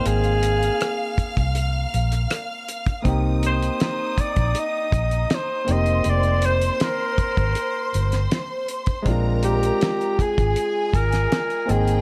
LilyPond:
<<
  \new Staff \with { instrumentName = "String section" } { \time 4/4 \key bes \mixolydian \tempo 4 = 80 <f'' f'''>1 | <ees' ees'''>2.~ <ees' ees'''>8 <c'' c'''>8~ | <c'' c'''>1 | <bes' bes''>4. <aes' aes''>2 <aes' g''>8 | }
  \new Staff \with { instrumentName = "Alto saxophone" } { \time 4/4 \key bes \mixolydian aes'2 r2 | r8 c''4 d''8 ees''4 c''8 ees''8 | d''8 c''8 bes'2 r4 | r8 g'4 aes'4 bes'4 aes'8 | }
  \new Staff \with { instrumentName = "Grand piano" } { \time 4/4 \key bes \mixolydian <bes c' ees' g''>2.~ <bes c' ees' g''>8 r8 | <bes c' ees' g'>2.~ <bes c' ees' g'>8 <bes c' ees' g'>8~ | <bes c' ees' g'>2.~ <bes c' ees' g'>8 r8 | <aes c' d' f'>2.~ <aes c' d' f'>8 <bes c' ees' g''>8 | }
  \new Staff \with { instrumentName = "Fingered electric bass" } { \clef bass \time 4/4 \key bes \mixolydian aes,,4 r8. c,8. bes,,8 r4 | c,4 r8. bes,,16 r8 bes,,8 r8 f,,8 | f,,4 r8. aes,,16 r8 g,,8 r4 | bes,,4 r8. aes,,16 r8 aes,,8 r8 aes,,8 | }
  \new DrumStaff \with { instrumentName = "Drums" } \drummode { \time 4/4 hh16 hh16 hh16 hh16 <hh ss>8 <hh bd>16 <hh bd>16 hh8 hh16 <hh ss>16 <hh ss>8 hh16 <hh bd>16 | <hh bd>8 hh16 hh16 <hh sn>8 <hh bd>16 <hh bd>16 hh8 <hh bd>16 hh16 <hh sn>8 hh16 hh16 | hh16 hh16 hh16 hh16 <hh sn>8 <hh bd>16 <hh bd>16 hh8 hh16 <hh sn>16 <hh sn>8 hh16 <hh bd>16 | <hh bd>8 hh16 hh16 <hh sn>16 hh16 <hh bd>16 <hh bd>16 hh8 <hh bd>16 <hh sn>16 <hh sn>16 hh16 hh16 hh16 | }
>>